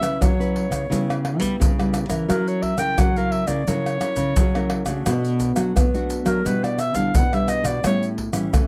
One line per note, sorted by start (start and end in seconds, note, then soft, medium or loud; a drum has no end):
0.00 0.17 C#3 medium
0.00 0.18 F#3 medium
0.00 0.32 C#4 medium
0.00 0.32 E4 medium
0.00 0.32 B4 medium
0.00 0.23 E5 loud
0.00 pandeiro medium
0.00 tamborim medium
0.00 shaker medium
0.21 0.87 C#3 medium
0.21 0.66 F#3 loud
0.21 1.26 C#5 medium
0.21 pandeiro medium
0.21 tamborim medium
0.21 shaker medium
0.21 surdo loud
0.39 0.86 C#4 medium
0.39 0.86 E4 medium
0.39 0.86 B4 medium
0.39 pandeiro soft
0.39 shaker soft
0.56 pandeiro medium
0.70 0.86 C#3 medium
0.70 pandeiro medium
0.70 tamborim medium
0.70 shaker medium
0.70 surdo soft
0.90 1.40 C#3 medium
0.90 1.57 C#3 medium
0.90 1.37 G3 medium
0.90 1.38 B3 medium
0.90 1.38 E4 medium
0.90 pandeiro medium
0.90 shaker medium
0.90 surdo medium
1.10 pandeiro soft
1.10 tamborim medium
1.10 shaker soft
1.25 pandeiro medium
1.25 tamborim medium
1.39 1.70 G3 medium
1.39 1.56 G3 medium
1.39 1.71 B3 medium
1.39 1.71 E4 medium
1.39 pandeiro medium
1.39 shaker medium
1.39 surdo soft
1.60 2.26 C#3 medium
1.60 2.04 C#3 loud
1.60 pandeiro medium
1.60 shaker medium
1.60 surdo loud
1.78 2.07 G3 medium
1.78 2.07 B3 medium
1.78 2.08 E4 medium
1.78 pandeiro soft
1.78 tamborim medium
1.78 shaker soft
1.94 pandeiro medium
1.94 tamborim medium
1.94 shaker medium
2.09 2.25 E3 medium
2.09 2.74 C#4 medium
2.09 2.75 E4 medium
2.09 2.75 A#4 medium
2.09 pandeiro medium
2.09 tamborim medium
2.09 shaker medium
2.09 surdo soft
2.29 2.73 F#3 loud
2.29 2.96 F#3 medium
2.29 2.49 A#4 medium
2.29 pandeiro medium
2.29 tamborim medium
2.29 shaker medium
2.29 surdo medium
2.48 2.64 C#5 medium
2.48 pandeiro soft
2.48 shaker soft
2.62 2.80 E5 medium
2.62 pandeiro medium
2.62 surdo soft
2.78 2.94 C#3 medium
2.78 3.09 C#4 medium
2.78 3.09 E4 medium
2.78 3.09 A#4 medium
2.78 3.01 G5 loud
2.78 pandeiro medium
2.78 tamborim medium
2.78 shaker medium
2.98 3.64 C#3 medium
2.98 3.43 F#3 medium
2.98 3.18 F#5 medium
2.98 pandeiro medium
2.98 tamborim medium
2.98 shaker medium
2.98 surdo loud
3.16 3.46 C#4 medium
3.16 3.46 E4 medium
3.16 3.46 A#4 medium
3.16 3.33 F5 loud
3.16 pandeiro soft
3.16 shaker soft
3.31 3.49 E5 loud
3.31 pandeiro medium
3.47 3.64 C#3 medium
3.47 3.61 C#4 medium
3.47 3.61 E4 medium
3.47 3.62 A#4 medium
3.47 3.70 D5 medium
3.47 pandeiro medium
3.47 tamborim medium
3.47 shaker medium
3.47 surdo soft
3.67 3.97 C#3 medium
3.67 4.34 F#3 medium
3.67 3.97 C#4 soft
3.67 3.97 E4 medium
3.67 3.97 A#4 medium
3.67 5.07 C#5 loud
3.67 pandeiro medium
3.67 shaker medium
3.67 surdo medium
3.86 pandeiro soft
3.86 tamborim medium
3.86 shaker soft
4.00 4.34 C#4 medium
4.00 4.34 E4 medium
4.00 4.35 A#4 medium
4.00 pandeiro medium
4.00 tamborim medium
4.00 shaker medium
4.16 4.33 C#3 medium
4.16 pandeiro medium
4.16 shaker medium
4.16 surdo soft
4.36 5.03 C#3 medium
4.36 4.81 F#3 medium
4.36 pandeiro medium
4.36 shaker loud
4.36 surdo loud
4.55 4.84 C#4 medium
4.55 4.85 E4 medium
4.55 4.85 A#4 medium
4.55 pandeiro soft
4.55 tamborim medium
4.55 shaker soft
4.70 pandeiro medium
4.70 tamborim medium
4.86 5.02 C#3 medium
4.86 5.52 A3 medium
4.86 5.52 D4 medium
4.86 5.52 F#4 medium
4.86 pandeiro medium
4.86 tamborim medium
4.86 shaker medium
4.86 surdo soft
5.06 5.72 B2 medium
5.06 5.51 B2 loud
5.06 pandeiro medium
5.06 tamborim medium
5.06 shaker medium
5.06 surdo medium
5.25 pandeiro soft
5.25 shaker soft
5.40 pandeiro medium
5.40 shaker medium
5.40 surdo soft
5.56 5.72 F#3 medium
5.56 5.87 A3 medium
5.56 5.87 D4 medium
5.56 5.87 F#4 medium
5.56 pandeiro medium
5.56 tamborim medium
5.56 shaker medium
5.76 6.42 F#3 medium
5.76 6.20 B3 medium
5.76 pandeiro medium
5.76 tamborim medium
5.76 shaker medium
5.76 surdo loud
5.94 6.40 A3 medium
5.94 6.40 D4 medium
5.94 6.41 F#4 medium
5.94 pandeiro soft
5.94 shaker soft
6.10 pandeiro medium
6.10 shaker medium
6.25 6.41 F#3 medium
6.25 6.48 A#4 medium
6.25 pandeiro medium
6.25 tamborim medium
6.25 shaker medium
6.25 surdo soft
6.45 6.94 B2 medium
6.45 7.11 B2 medium
6.45 6.78 G3 medium
6.45 6.78 D4 medium
6.45 6.78 E4 medium
6.45 6.65 B4 medium
6.45 pandeiro medium
6.45 shaker medium
6.45 surdo medium
6.64 6.81 D5 medium
6.64 pandeiro soft
6.64 tamborim medium
6.64 shaker soft
6.79 6.97 E5 loud
6.79 pandeiro medium
6.79 tamborim medium
6.79 shaker medium
6.94 7.10 D3 medium
6.94 7.25 G3 medium
6.94 7.25 D4 medium
6.94 7.25 E4 medium
6.94 7.18 F5 medium
6.94 pandeiro medium
6.94 shaker medium
6.94 surdo soft
7.14 7.80 B2 medium
7.14 7.59 B3 medium
7.14 7.36 F#5 medium
7.14 pandeiro medium
7.14 shaker medium
7.14 surdo loud
7.33 7.79 G3 medium
7.33 7.79 D4 medium
7.33 7.79 E4 medium
7.33 7.51 E5 medium
7.33 pandeiro soft
7.33 tamborim medium
7.33 shaker soft
7.48 7.68 D#5 loud
7.48 pandeiro medium
7.48 tamborim medium
7.48 shaker medium
7.63 7.80 B2 medium
7.63 7.84 D5 medium
7.63 pandeiro medium
7.63 tamborim medium
7.63 shaker medium
7.63 surdo soft
7.84 8.28 A2 medium
7.84 8.50 A2 medium
7.84 8.17 G3 medium
7.84 8.17 C#4 medium
7.84 8.17 E4 medium
7.84 8.07 C#5 loud
7.84 pandeiro medium
7.84 tamborim loud
7.84 shaker medium
7.84 surdo medium
8.03 pandeiro soft
8.03 shaker soft
8.18 pandeiro medium
8.18 surdo soft
8.33 8.49 E3 medium
8.33 8.64 G3 medium
8.33 8.64 C#4 medium
8.33 8.64 E4 medium
8.33 pandeiro medium
8.33 tamborim medium
8.33 shaker medium
8.53 8.67 E3 medium
8.53 8.67 A3 medium
8.53 pandeiro medium
8.53 tamborim medium
8.53 shaker medium
8.53 surdo loud